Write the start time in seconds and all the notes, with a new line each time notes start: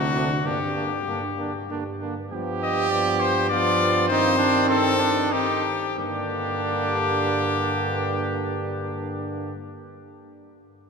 Already playing: D2 F#4
0.14 D3 C4 D4
0.44 G2 D3 A#3 D4 G4
0.76 D3 A#3 D4
1.07 G2 D3 A#3 D4
1.38 D3 A#3 D4
1.70 G2 D3 A#3 D4
2.01 D3 A#3 D4
2.32 G2 F3 B3 G4
2.63 D#5
2.91 F3 B3 D5
3.20 C5
3.50 F3 B3 F4 D5
4.08 D#3 C4 D#4 C5
4.38 D4
4.68 C4 A4
5.00 D4
5.32 D#3 C4 D#4 G4
5.97 G2 D3 A#3 D4 G4